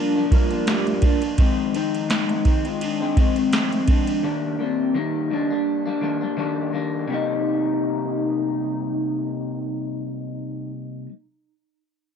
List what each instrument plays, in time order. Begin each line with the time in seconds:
Already playing: clean electric guitar F3 A#3 D4, tonewheel organ G3 A#3 D4 F4 A#4, soft synth lead D4
0.15 clean electric guitar F3 A#3 D4
0.30 clean electric guitar G2 F3 A#3, tonewheel organ G3 A#3 D4 F4 A#4, soft synth lead F4, kick, ride
0.34 clean electric guitar D4
0.50 clean electric guitar F3 A#3 D4, ride
0.67 clean electric guitar G2 F3 A#3 D4, soft synth lead G4, snare, ride
0.87 ride
1.02 clean electric guitar G2 F3 A#3 D4, soft synth lead D4, kick, ride
1.22 ride
1.38 clean electric guitar F2 D#3 G#3 C4, soft synth lead C4, kick, ride
1.73 clean electric guitar F2 D#3 G#3 C4, soft synth lead D#4, ride
1.94 ride
2.09 clean electric guitar F2 D#3 G#3 C4, snare, ride
2.29 ride
2.45 clean electric guitar F2 D#3 G#3 C4, kick, ride
2.65 clean electric guitar D#3 G#3 C4, soft synth lead F4, ride
2.81 soft synth lead D4, ride
3.00 clean electric guitar D#3 G#3 C4
3.17 clean electric guitar F2 D#3 G#3 C4, soft synth lead C4, kick, ride
3.36 clean electric guitar D#3 G#3 C4, ride
3.52 clean electric guitar F2 D#3 G#3 C4, soft synth lead C4, snare, ride
3.72 ride
3.87 clean electric guitar F2 D#3 G#3 C4, soft synth lead D4, kick, ride
4.07 ride
4.23 clean electric guitar D#3 G3 A#3 D4
4.59 clean electric guitar D#3 G3 A#3 D4, soft synth lead C4
4.94 clean electric guitar D#3 G3 A#3, soft synth lead D#4
5.30 clean electric guitar D#3 G3 A#3 D4, soft synth lead D4
5.50 clean electric guitar G3 A#3 D4
5.86 clean electric guitar G3 A#3 D4
6.01 clean electric guitar D#3 G3 A#3 D4
6.21 clean electric guitar G3 A#3 D4
6.37 clean electric guitar D#3 G3 A#3 D4
6.72 clean electric guitar D#3 G3 A#3 D4
7.08 clean electric guitar C3 G3, soft synth lead D#4
7.12 clean electric guitar A#3 D#4